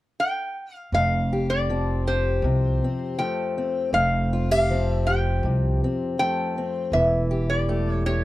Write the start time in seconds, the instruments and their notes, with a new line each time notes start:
0.20 resonator guitar played with a steel bar G5
0.76 resonator guitar played with a steel bar F5
0.92 upright bass F1, steel-string acoustic guitar F2, resonator guitar played with a steel bar F5
1.33 steel-string acoustic guitar G4
1.50 resonator guitar played with a steel bar D5
1.70 steel-string acoustic guitar F3 C4
2.07 steel-string acoustic guitar G4, resonator guitar played with a steel bar C5
2.42 upright bass C2, steel-string acoustic guitar C3
2.84 steel-string acoustic guitar C4
3.19 steel-string acoustic guitar F3 A3, resonator guitar played with a steel bar G5
3.58 steel-string acoustic guitar C4
3.93 upright bass F1, steel-string acoustic guitar F2, resonator guitar played with a steel bar F5
4.33 steel-string acoustic guitar F4
4.51 steel-string acoustic guitar G4, resonator guitar played with a steel bar F5
4.70 steel-string acoustic guitar F3 C4
4.93 resonator guitar played with a steel bar E5
5.07 steel-string acoustic guitar G4, resonator guitar played with a steel bar G5
5.43 upright bass C2, steel-string acoustic guitar C3
5.84 steel-string acoustic guitar C4
6.19 steel-string acoustic guitar F3 A3, resonator guitar played with a steel bar G5
6.58 steel-string acoustic guitar C4
6.92 upright bass E1, steel-string acoustic guitar E3, resonator guitar played with a steel bar E5
7.31 steel-string acoustic guitar G4
7.50 resonator guitar played with a steel bar D5
7.69 steel-string acoustic guitar A3 G4
7.92 resonator guitar played with a steel bar C#5
8.06 steel-string acoustic guitar G4, resonator guitar played with a steel bar C#5